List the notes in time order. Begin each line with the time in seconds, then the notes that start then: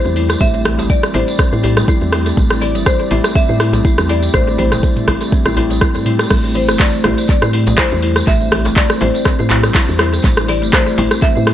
Already playing: A3 C4 E4 G4 C5 D5
0.05 E2, closed hi-hat, tambourine
0.16 E4, open hi-hat
0.30 cross-stick, closed hi-hat, tambourine
0.41 A1 A3 E5, kick, tambourine, djembe tone
0.54 D4, closed hi-hat, tambourine
0.65 E3, cross-stick, open hi-hat, djembe bass
0.79 G1 G3, closed hi-hat, tambourine, djembe slap, djembe tone
0.90 D5, kick, tambourine
1.03 cross-stick, closed hi-hat, tambourine
1.14 A1 E4 C5, open hi-hat, djembe slap, djembe tone
1.28 closed hi-hat, tambourine
1.39 C4, kick, cross-stick, tambourine
1.53 A2 E4, tambourine
1.64 E4, open hi-hat, djembe bass
1.77 G3, cross-stick, closed hi-hat, tambourine
1.88 E4, kick, tambourine
2.01 E2, closed hi-hat, tambourine
2.13 E4, cross-stick, open hi-hat
2.26 closed hi-hat, tambourine
2.37 A1 A3, kick, tambourine
2.50 D4, cross-stick, closed hi-hat, tambourine
2.61 E3 D5, open hi-hat
2.75 G1 G3, closed hi-hat, tambourine
2.86 C5, kick, cross-stick, tambourine
2.99 closed hi-hat, tambourine
3.11 A1 E4, open hi-hat, djembe slap, djembe tone
3.24 cross-stick, closed hi-hat, tambourine
3.35 C4 E5, kick, tambourine
3.49 A2 E4, tambourine
3.60 E4, cross-stick, open hi-hat
3.73 G3, closed hi-hat, tambourine, djembe slap, djembe tone, djembe bass
3.85 E4, kick, tambourine
3.98 E2, cross-stick, closed hi-hat, tambourine
4.09 E4 D5, open hi-hat
4.23 closed hi-hat, tambourine
4.34 A1 A3 C5, kick, cross-stick, djembe tone
4.47 D4, closed hi-hat, tambourine
4.58 E3 C5, open hi-hat, djembe slap, djembe bass
4.72 G1 G3, cross-stick, closed hi-hat, mid tom, tambourine, djembe slap, djembe tone
4.83 kick, tambourine
4.96 closed hi-hat, mid tom, tambourine
5.08 A1 E4, kick, cross-stick, open hi-hat, djembe slap, djembe tone
5.21 closed hi-hat, tambourine
5.32 C4, kick, tambourine
5.46 A1 E4, cross-stick, closed hi-hat, tambourine
5.57 E4, open hi-hat, djembe bass
5.70 G3, closed hi-hat, tambourine
5.81 E4, kick, cross-stick
5.94 A2, closed hi-hat, tambourine
6.06 E4, mid tom, open hi-hat
6.19 cross-stick, closed hi-hat, tambourine
6.30 A1 A3 C5, kick, cross-stick, crash, tambourine
6.44 D4, closed hi-hat, tambourine
6.55 E3 C5, open hi-hat
6.68 G1 A3, cross-stick, closed hi-hat, tambourine
6.80 D5, kick, clap, tambourine
6.93 closed hi-hat, tambourine
7.04 A1 E4, cross-stick, open hi-hat, djembe slap, djembe tone
7.18 closed hi-hat, tambourine
7.29 C4 D5, kick, tambourine
7.42 A2 E4, cross-stick, tambourine
7.53 E4, open hi-hat
7.66 G3, closed hi-hat, tambourine, djembe slap, djembe tone, djembe bass
7.78 E4 C5, kick, cross-stick, clap, tambourine
7.91 E2, closed hi-hat, tambourine
8.02 E4, open hi-hat
8.16 cross-stick, closed hi-hat, tambourine
8.27 A1 A3 E5, kick, tambourine, djembe tone
8.41 D4, closed hi-hat, tambourine
8.52 E3, cross-stick, open hi-hat, djembe bass
8.65 G1 A3, closed hi-hat, tambourine, djembe slap, djembe tone
8.76 D5, kick, clap, tambourine
8.90 cross-stick, closed hi-hat, tambourine
9.01 A1 E4 C5, open hi-hat, djembe slap, djembe tone
9.14 closed hi-hat, tambourine
9.25 C4, kick, cross-stick, tambourine
9.39 A2 E4, tambourine
9.50 E4, clap, open hi-hat, djembe bass
9.63 G3, cross-stick, closed hi-hat, tambourine
9.75 E4, kick, clap, tambourine
9.88 E2, closed hi-hat, tambourine
9.99 E4, cross-stick, open hi-hat
10.13 closed hi-hat, tambourine
10.24 A1 A3, kick, tambourine
10.37 D4, cross-stick, closed hi-hat, tambourine
10.49 E3 D5, open hi-hat
10.62 G1 A3, closed hi-hat, tambourine
10.73 C5, kick, cross-stick, clap
10.86 closed hi-hat, tambourine
10.98 A1 E4, open hi-hat, djembe slap, djembe tone
11.11 cross-stick, closed hi-hat, tambourine
11.22 C4 E5, kick, tambourine
11.36 A2 E4, tambourine
11.47 E4, cross-stick, open hi-hat